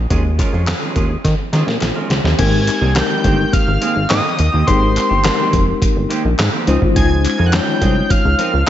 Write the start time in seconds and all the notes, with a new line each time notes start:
0.10 D#2 G#3 C#4 F4 G#4, kick, closed hi-hat
0.25 muted clean electric guitar stroke
0.38 G#3 C#4 F4 A#4, kick, clap, closed hi-hat
0.53 F2 G#3 C#4 F4 G#4
0.67 muted clean electric guitar stroke, snare, clap, closed hi-hat
0.82 G#3 C#4 F4 G#4
0.96 D#2 G#3 C#4 F4 G#4, kick, closed hi-hat
1.11 muted clean electric guitar stroke
1.24 D#3, kick, snare, closed hi-hat
1.39 muted clean electric guitar stroke
1.53 D#3 G#3 C#4 F4 G#4, snare, closed hi-hat
1.67 A#2, muted clean electric guitar stroke, snare
1.81 A#1, muted clean electric guitar stroke, snare, clap, closed hi-hat
1.95 G#3 C#4 F4 A#4
2.10 C#2, muted clean electric guitar stroke, snare, closed hi-hat
2.24 D#2, muted clean electric guitar stroke, snare
2.38 G#1 D#3 G#3 A#3 C4 D#4 G4 A#4 G#6, kick, closed hi-hat, crash
2.52 muted clean electric guitar stroke
2.67 muted clean electric guitar stroke, clap, closed hi-hat
2.81 C2 D#3 A#3 C4 G#4
2.95 G#3 C4 D#4 G4 A#4 G6, muted clean electric guitar stroke, snare, clap, closed hi-hat
3.10 muted clean electric guitar stroke
3.24 G1 D#3 A#3 C4 G4, kick, closed hi-hat
3.38 muted clean electric guitar stroke
3.53 F6, muted clean electric guitar stroke, kick, closed hi-hat
3.67 G#1, muted clean electric guitar stroke
3.81 D#3 A#3 C4 G#4, closed hi-hat
3.95 G#1, muted clean electric guitar stroke
4.09 G#2 D#3 A#3 C4 G4 D#6, snare, clap, closed hi-hat
4.24 muted clean electric guitar stroke
4.38 D#2, muted clean electric guitar stroke, closed hi-hat
4.52 D#2 D#3 A#3 C4 G4
4.67 G#1 D#3 G#3 A#3 C4 D#4 G4 A#4 C6, kick, closed hi-hat
4.81 muted clean electric guitar stroke
4.96 muted clean electric guitar stroke, clap, closed hi-hat
5.10 G1 D#3 A#3 C4 G4
5.24 G#3 C4 D#4 G4 A#4, muted clean electric guitar stroke, snare, clap, closed hi-hat
5.38 D#3 A#3 C4 G4
5.53 F1, muted clean electric guitar stroke, kick, closed hi-hat
5.66 muted clean electric guitar stroke
5.82 kick, closed hi-hat
5.95 G1, muted clean electric guitar stroke
6.09 D#3 A#3 C4 G4, closed hi-hat
6.24 A#1, muted clean electric guitar stroke
6.38 G#2, muted clean electric guitar stroke, snare, clap, closed hi-hat
6.52 D#3 A#3 C4 G4
6.67 C#2 F3 G#3 C4 C#4 D#4 F4 G#4 C5, closed hi-hat
6.81 G#1, muted clean electric guitar stroke, kick
6.95 C#2 F3 C4 D#4 G#4 G#6, kick, closed hi-hat
7.10 muted clean electric guitar stroke
7.23 G#6, muted clean electric guitar stroke, clap, closed hi-hat
7.38 F2 F3 C4 D#4 A#4
7.46 F#6
7.53 G#3 C#4 D#4 F4 C#5 G6, muted clean electric guitar stroke, snare, clap, closed hi-hat
7.67 muted clean electric guitar stroke
7.81 C2 F3 C4 D#4 G#4, kick, closed hi-hat
7.96 muted clean electric guitar stroke
8.10 F6, muted clean electric guitar stroke, kick, closed hi-hat
8.24 C#2, muted clean electric guitar stroke
8.38 F3 C4 D#4 A#4, closed hi-hat
8.53 C#2, muted clean electric guitar stroke